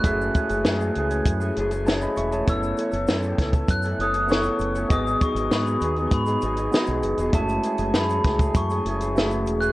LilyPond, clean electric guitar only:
\new Staff \with { instrumentName = "Clean electric guitar" } { \time 4/4 \key fis \dorian \tempo 4 = 99 <fis, cis e a cis' gis'>8 <e a cis' gis'>16 <e a cis' gis'>16 <fis, cis e a cis' gis'>8 <e a cis' gis'>16 <e a cis' gis'>8 <e a cis' gis'>16 <e a cis' gis'>16 <e a cis' gis'>16 <fis, cis e a cis' gis'>8. <e a cis' gis'>16 | <fis, cis e a cis' a'>8 <e a cis' a'>16 <e a cis' a'>16 <fis, cis e a cis' a'>8 <e a cis' a'>16 <e a cis' a'>8 <e a cis' a'>16 <e a cis' a'>16 <e a cis' a'>16 <fis, cis e a cis' a'>8. <e a cis' a'>16 | <gis, dis fis b dis' gis'>8 <fis b dis' gis'>16 <fis b dis' gis'>16 <gis, dis fis b dis' gis'>8 <fis b dis' gis'>16 <fis b dis' gis'>8 <fis b dis' gis'>16 <fis b dis' gis'>16 <fis b dis' gis'>16 <gis, dis fis b dis' gis'>8. <fis b dis' gis'>16 | <fis, cis e a cis'>8 <e a cis' gis'>16 <e a cis' gis'>16 <fis, cis e a cis' gis'>8 <e a cis' gis'>16 <e a cis' gis'>8 <e a cis' gis'>16 <e a cis' gis'>16 <e a cis' gis'>16 <fis, cis e a cis' gis'>8. <e a cis' gis'>16 | }